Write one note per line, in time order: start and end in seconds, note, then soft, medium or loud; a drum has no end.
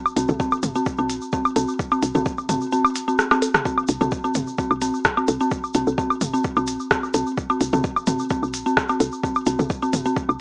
0.06 high woodblock medium
0.06 shaker soft
0.16 0.26 C2 loud
0.16 0.20 C4 medium
0.16 open hi-hat medium
0.16 shaker medium
0.28 0.37 C2 medium
0.28 mid tom medium
0.28 low bongo medium
0.28 shaker soft
0.40 0.43 C4 medium
0.40 kick loud
0.40 shaker medium
0.51 high woodblock medium
0.51 shaker soft
0.63 0.73 G1 medium
0.63 mid tom medium
0.63 open hi-hat medium
0.63 shaker medium
0.75 0.78 C4 medium
0.75 shaker soft
0.86 kick loud
0.86 shaker medium
0.98 1.11 C2 medium
0.98 1.02 C4 medium
0.98 high woodblock soft
0.98 shaker soft
1.10 1.19 A#1 medium
1.10 open hi-hat medium
1.10 shaker medium
1.21 shaker soft
1.33 1.36 C4 medium
1.33 kick loud
1.33 shaker soft
1.45 high woodblock medium
1.45 shaker soft
1.56 1.66 C2 loud
1.56 1.59 C4 medium
1.56 open hi-hat medium
1.56 low bongo medium
1.56 shaker medium
1.68 shaker soft
1.79 kick loud
1.79 shaker soft
1.92 1.95 C4 medium
1.92 high woodblock medium
1.92 shaker soft
2.02 2.12 C2 loud
2.02 open hi-hat medium
2.02 shaker medium
2.15 2.23 C2 medium
2.15 2.18 C4 medium
2.15 mid tom medium
2.15 low bongo medium
2.15 shaker soft
2.26 kick loud
2.26 shaker soft
2.38 high woodblock soft
2.38 shaker soft
2.49 2.59 G1 medium
2.49 2.52 C4 medium
2.49 mid tom medium
2.49 open hi-hat medium
2.49 shaker medium
2.61 shaker soft
2.72 2.76 C4 medium
2.72 shaker medium
2.85 high woodblock medium
2.85 shaker soft
2.95 open hi-hat medium
2.95 shaker medium
3.08 3.11 C4 medium
3.08 shaker soft
3.19 cross-stick medium
3.19 shaker soft
3.31 3.34 C4 medium
3.31 cross-stick medium
3.31 high woodblock medium
3.31 shaker soft
3.42 open hi-hat medium
3.42 low bongo medium
3.42 shaker medium
3.54 cross-stick medium
3.54 mid tom medium
3.54 shaker soft
3.65 3.69 C4 medium
3.65 kick loud
3.65 shaker medium
3.78 high woodblock medium
3.78 shaker soft
3.88 3.98 C2 loud
3.88 open hi-hat medium
3.88 shaker medium
4.01 4.09 C2 medium
4.01 4.04 C4 medium
4.01 mid tom medium
4.01 low bongo medium
4.01 shaker soft
4.12 kick loud
4.12 shaker medium
4.24 4.27 C4 medium
4.24 high woodblock soft
4.24 shaker soft
4.34 4.45 G1 medium
4.34 mid tom medium
4.34 open hi-hat medium
4.34 shaker medium
4.47 shaker soft
4.58 4.62 C4 medium
4.58 kick loud
4.58 shaker soft
4.71 4.83 C2 medium
4.71 high woodblock medium
4.71 shaker soft
4.82 4.91 A#1 medium
4.82 4.85 C4 medium
4.82 open hi-hat medium
4.82 shaker medium
4.94 shaker soft
5.05 kick loud
5.05 cross-stick loud
5.05 shaker soft
5.17 5.20 C4 medium
5.17 high woodblock medium
5.17 shaker soft
5.28 5.38 C2 loud
5.28 open hi-hat medium
5.28 low bongo medium
5.28 shaker medium
5.40 5.43 C4 medium
5.40 shaker soft
5.51 kick loud
5.51 shaker medium
5.64 high woodblock soft
5.64 shaker soft
5.74 5.84 C2 loud
5.74 5.78 C4 medium
5.74 open hi-hat medium
5.74 shaker medium
5.87 5.95 C2 medium
5.87 low bongo medium
5.87 shaker soft
5.98 6.01 C4 medium
5.98 kick loud
5.98 shaker medium
6.10 high woodblock medium
6.10 shaker soft
6.21 6.31 G1 medium
6.21 mid tom medium
6.21 open hi-hat medium
6.21 shaker medium
6.34 6.36 C4 medium
6.34 shaker soft
6.44 kick loud
6.44 shaker soft
6.56 6.69 C2 medium
6.56 6.60 C4 medium
6.56 high woodblock medium
6.56 shaker soft
6.67 6.77 A#1 medium
6.67 open hi-hat medium
6.67 shaker loud
6.80 shaker soft
6.91 6.94 C4 medium
6.91 kick loud
6.91 cross-stick loud
6.91 shaker soft
7.03 high woodblock soft
7.03 shaker soft
7.14 7.24 C2 loud
7.14 7.18 C4 medium
7.14 open hi-hat medium
7.14 low bongo medium
7.14 shaker loud
7.27 shaker soft
7.38 kick loud
7.38 shaker medium
7.50 7.53 C4 medium
7.50 high woodblock medium
7.50 shaker soft
7.61 7.70 C2 loud
7.61 open hi-hat loud
7.61 shaker loud
7.73 7.81 C2 medium
7.73 7.76 C4 medium
7.73 mid tom medium
7.73 low bongo medium
7.73 shaker soft
7.84 kick loud
7.84 shaker medium
7.96 high woodblock medium
7.96 shaker soft
8.07 8.17 G1 medium
8.07 8.11 C4 medium
8.07 mid tom medium
8.07 open hi-hat medium
8.07 shaker medium
8.19 shaker soft
8.30 8.34 C4 medium
8.30 kick loud
8.30 shaker medium
8.43 8.55 C2 medium
8.43 high woodblock soft
8.43 shaker soft
8.54 8.63 A#1 medium
8.54 open hi-hat medium
8.54 shaker loud
8.66 8.69 C4 medium
8.66 shaker soft
8.77 kick loud
8.77 cross-stick loud
8.77 shaker medium
8.89 8.92 C4 medium
8.89 high woodblock medium
8.89 shaker soft
9.00 9.10 C2 loud
9.00 open hi-hat medium
9.00 low bongo medium
9.00 shaker medium
9.12 shaker soft
9.23 9.27 C4 medium
9.23 kick loud
9.23 shaker medium
9.35 high woodblock medium
9.35 shaker soft
9.46 9.56 C2 loud
9.46 9.50 C4 medium
9.46 open hi-hat loud
9.46 shaker medium
9.59 9.67 C2 medium
9.59 mid tom medium
9.59 low bongo medium
9.59 shaker soft
9.70 kick loud
9.70 shaker medium
9.82 9.85 C4 medium
9.82 high woodblock soft
9.82 shaker soft
9.93 10.03 G1 medium
9.93 mid tom medium
9.93 open hi-hat medium
9.93 shaker medium
10.05 10.09 C4 medium
10.05 shaker soft
10.16 kick loud
10.16 shaker soft
10.29 10.37 C2 medium
10.29 high woodblock medium
10.29 shaker soft